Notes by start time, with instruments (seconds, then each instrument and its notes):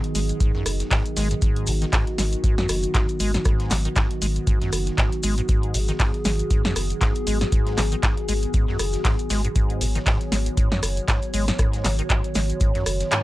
Already playing: ambient pad D#3 B3 F#4 G#4 B4 D#5
0.04 closed hi-hat
0.15 sub bass G#1, acid bass G#3, closed hi-hat, open hi-hat, maracas
0.29 closed hi-hat, maracas
0.40 acid bass G#2, kick, closed hi-hat, maracas
0.55 acid bass F#2, snare
0.66 sub bass F#1, cross-stick, closed hi-hat, open hi-hat, maracas
0.80 snare, closed hi-hat, maracas
0.91 acid bass G#2, kick, snare, clap, closed hi-hat, open hi-hat, maracas
1.06 closed hi-hat, maracas
1.17 sub bass G#1, acid bass G#3, snare, open hi-hat, maracas
1.31 acid bass G#2, closed hi-hat, maracas
1.42 acid bass G#2, ambient pad F#4, kick, closed hi-hat, maracas
1.56 closed hi-hat
1.67 sub bass G#1, acid bass C#3, closed hi-hat, open hi-hat, maracas
1.82 acid bass D#3, snare, closed hi-hat, maracas
1.93 acid bass G#2, kick, snare, clap, closed hi-hat, open hi-hat, maracas
2.07 closed hi-hat
2.18 sub bass G#1, acid bass G#3, snare, closed hi-hat, open hi-hat, maracas
2.33 closed hi-hat, maracas
2.44 acid bass G#2, kick, closed hi-hat, maracas
2.58 acid bass F#2, snare
2.69 sub bass F#1, cross-stick, snare, closed hi-hat, open hi-hat, maracas
2.83 closed hi-hat, maracas
2.94 acid bass G#2, kick, snare, clap, closed hi-hat, maracas
3.09 closed hi-hat, maracas
3.20 sub bass G#1, acid bass G#3, closed hi-hat, open hi-hat, maracas
3.34 acid bass G#2, snare, closed hi-hat, maracas
3.45 acid bass G#2, kick, cross-stick, closed hi-hat, maracas
3.60 snare, closed hi-hat
3.71 sub bass G#1, acid bass C#3, snare, clap, closed hi-hat, open hi-hat, maracas
3.85 acid bass D#3, closed hi-hat, maracas
3.96 acid bass G#2, kick, snare, clap, closed hi-hat, maracas
4.11 closed hi-hat
4.22 sub bass G#1, acid bass G#3, closed hi-hat, open hi-hat, maracas
4.36 closed hi-hat, maracas
4.47 acid bass G#2, kick, closed hi-hat, maracas
4.62 acid bass F#2, snare, closed hi-hat
4.72 sub bass F#1, cross-stick, closed hi-hat, open hi-hat, maracas
4.87 snare, closed hi-hat, maracas
4.98 acid bass G#2, kick, snare, clap, closed hi-hat, maracas
5.12 closed hi-hat, maracas
5.23 sub bass G#1, acid bass G#3, closed hi-hat, open hi-hat, maracas
5.38 acid bass G#2, closed hi-hat, maracas
5.48 acid bass G#2, ambient pad G#4, kick, closed hi-hat, maracas
5.63 closed hi-hat
5.74 sub bass G#1, acid bass C#3, closed hi-hat, open hi-hat, maracas
5.88 acid bass D#3, snare, closed hi-hat, maracas
5.99 acid bass G#2, kick, snare, clap, closed hi-hat, open hi-hat, maracas
6.06 ambient pad G#5
6.14 closed hi-hat
6.25 sub bass G#1, acid bass G#3, snare, closed hi-hat, open hi-hat, maracas
6.39 closed hi-hat, maracas
6.51 acid bass G#2, kick, closed hi-hat, maracas
6.65 acid bass F#2, snare
6.76 sub bass F#1, cross-stick, snare, closed hi-hat, open hi-hat, maracas
6.90 closed hi-hat, maracas
7.01 acid bass G#2, kick, snare, clap, closed hi-hat, maracas
7.15 closed hi-hat, maracas
7.27 sub bass G#1, acid bass G#3, closed hi-hat, open hi-hat, maracas
7.41 acid bass G#2, snare, closed hi-hat, maracas
7.52 acid bass G#2, kick, closed hi-hat, maracas
7.67 snare, closed hi-hat
7.78 sub bass G#1, acid bass C#3, snare, clap, closed hi-hat, open hi-hat, maracas
7.92 acid bass D#3, closed hi-hat, maracas
8.03 acid bass G#2, kick, snare, clap, closed hi-hat, maracas
8.17 closed hi-hat
8.29 sub bass G#1, acid bass G#3, closed hi-hat, open hi-hat, maracas
8.42 closed hi-hat, maracas
8.54 acid bass G#2, kick, closed hi-hat, maracas
8.68 acid bass F#2, snare
8.79 sub bass F#1, cross-stick, closed hi-hat, open hi-hat, maracas
8.93 snare, closed hi-hat, maracas
9.05 acid bass G#2, kick, snare, clap, closed hi-hat, open hi-hat, maracas
9.19 closed hi-hat, maracas
9.30 sub bass G#1, acid bass G#3, snare, open hi-hat, maracas
9.44 acid bass G#2, closed hi-hat, maracas
9.56 acid bass G#2, ambient pad C#5, kick, closed hi-hat, maracas
9.70 closed hi-hat
9.81 sub bass G#1, acid bass C#3, closed hi-hat, open hi-hat, maracas
9.95 acid bass D#3, snare, closed hi-hat, maracas
10.06 acid bass G#2, kick, snare, clap, closed hi-hat, open hi-hat, maracas
10.21 closed hi-hat
10.32 sub bass G#1, acid bass G#3, snare, closed hi-hat, open hi-hat, maracas
10.46 closed hi-hat, maracas
10.57 acid bass G#2, kick, closed hi-hat, maracas
10.72 acid bass F#2, snare
10.83 sub bass F#1, cross-stick, snare, closed hi-hat, open hi-hat, maracas
10.97 closed hi-hat, maracas
11.08 acid bass G#2, kick, snare, clap, closed hi-hat, maracas
11.22 closed hi-hat, maracas
11.34 sub bass G#1, acid bass G#3, closed hi-hat, open hi-hat, maracas
11.48 acid bass G#2, snare, closed hi-hat, maracas
11.59 acid bass G#2, kick, cross-stick, closed hi-hat, maracas
11.73 snare, closed hi-hat, maracas
11.84 sub bass G#1, acid bass C#3, snare, clap, closed hi-hat, open hi-hat, maracas
11.99 acid bass D#3, closed hi-hat, maracas
12.10 acid bass G#2, kick, snare, clap, closed hi-hat, maracas
12.24 closed hi-hat, maracas
12.35 sub bass G#1, acid bass G#3, snare, closed hi-hat, open hi-hat, maracas
12.50 closed hi-hat, maracas
12.60 acid bass G#2, kick, closed hi-hat, maracas
12.75 acid bass F#2, snare, closed hi-hat
12.86 sub bass F#1, cross-stick, closed hi-hat, open hi-hat, maracas
13.00 snare, closed hi-hat, maracas
13.12 acid bass G#2, snare, clap, closed hi-hat, maracas